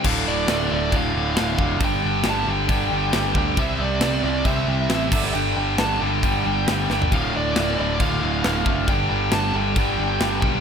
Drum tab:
CC |x---x---x---x---|x---x---x---x---|x---x---x---x-x-|x---x---x---x---|
SD |----o-------o---|----o-------o---|----o-------o--o|----o-------o-o-|
FT |----------------|----------------|----------------|---------------o|
BD |o-------o-----o-|o-------o-----o-|o-------o-----o-|--------o-------|

CC |x---x---x---x---|x---x---x---x---|
SD |----o-------o---|----o-------o---|
FT |----------------|----------------|
BD |o-------o-----o-|o-------o-----o-|